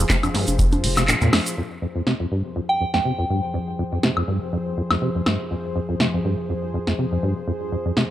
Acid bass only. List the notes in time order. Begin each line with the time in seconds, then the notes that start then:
0.10 C3
0.23 F2
0.34 G2
0.59 F2
0.83 C3
0.97 C3
1.08 A#2
1.22 A#2
1.33 F2
1.57 F2
1.82 F2
1.95 F2
2.06 C3
2.20 F2
2.31 G2
2.56 F2
2.80 F2
2.94 F2
3.05 C3
3.19 F2
3.30 G2
3.54 F2
3.79 F2
3.92 F2
4.03 C3
4.17 F2
4.28 G2
4.52 F2
4.77 F2
4.91 F2
5.02 C3
5.15 F2
5.26 G2
5.51 F2
5.76 F2
5.89 F2
6.00 C3
6.13 F2
6.25 G2
6.49 F2
6.74 F2
6.87 F2
6.98 C3
7.12 F2
7.23 G2
7.47 F2
7.72 F2
7.85 F2
7.97 C3